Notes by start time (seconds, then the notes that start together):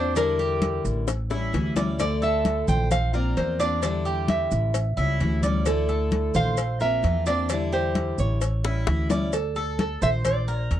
Already playing: E2 A#3 C4 D4 F4 C5
0.15 D3 G3 D4 E4 A#4, cowbell, high conga, maracas
0.39 G4, high conga, maracas
0.62 cowbell, high conga, maracas
0.85 A1, maracas
1.08 muted steel-string acoustic guitar stroke, cowbell, high bongo, high conga, maracas
1.30 G3 C#4 E4, high bongo, high conga, maracas
1.53 D2 E3 G3 C#4 E4, cowbell, low bongo, high conga, maracas
1.76 G3 C#4 E4 D5, cowbell, low bongo, high conga, maracas
1.99 D3 A3 D4 E4 D5, cowbell, high conga, maracas
2.22 A4 E5, high conga, maracas
2.45 cowbell, high conga, maracas
2.68 A#1 C5 G5, high conga, low conga, maracas
2.90 F5, muted steel-string acoustic guitar stroke, cowbell, high conga, low conga, maracas
3.13 A#3 C4 F4 A#4 D5, high conga, maracas
3.37 E2 F3 A#3 C4 F4 C5, cowbell, high conga, maracas
3.59 A#3 C4 D4 F4 D5, cowbell, high conga, maracas
3.82 D3 G3 D4 E4, cowbell, high conga, maracas
4.05 G4, high conga, maracas
4.28 E5, cowbell, high conga, maracas
4.51 A1, maracas
4.74 muted steel-string acoustic guitar stroke, cowbell, high conga, maracas
4.97 C#2 G3 C#4 E4, high conga, maracas
5.20 D2 E3 G3 C#4 E4, cowbell, high conga, maracas
5.43 G3 C#4 E4 D5, cowbell, high conga, maracas
5.65 D3 A3 D4 E4 A4, cowbell, maracas
5.89 A4, high conga, maracas
6.11 cowbell, high conga, maracas
6.34 A#1 C5 F5, high conga, low conga, maracas
6.57 muted steel-string acoustic guitar stroke, cowbell, high conga, maracas
6.80 A#3 C4 F4 A#4 E5, high conga, maracas
7.02 E2 F3 A#3 C4 F4, cowbell, high conga, maracas
7.26 A#3 C4 D4 F4 D5, cowbell, high conga, maracas
7.49 D3 G3 D4 E4, cowbell, high conga, maracas
7.72 G4 C5, high conga, maracas
7.95 cowbell, high conga, maracas
8.18 A1 C#5, maracas
8.41 muted steel-string acoustic guitar stroke, cowbell, high conga, maracas
8.64 G3 C#4 E4, high bongo, high conga, maracas
8.86 D2 E3 G3 C#4 E4, cowbell, high bongo, high conga, maracas
9.09 G3 C#4 E4 D5, cowbell, low bongo, high conga, maracas
9.33 A4, cowbell, high conga, maracas
9.56 A4, high conga, maracas
9.79 A4, cowbell, high conga, maracas
10.02 A#1 C5 E5, high conga, low conga, maracas
10.25 D5, cowbell, high conga, low conga, maracas
10.48 A#4, high conga, maracas
10.71 E2, cowbell, high conga, maracas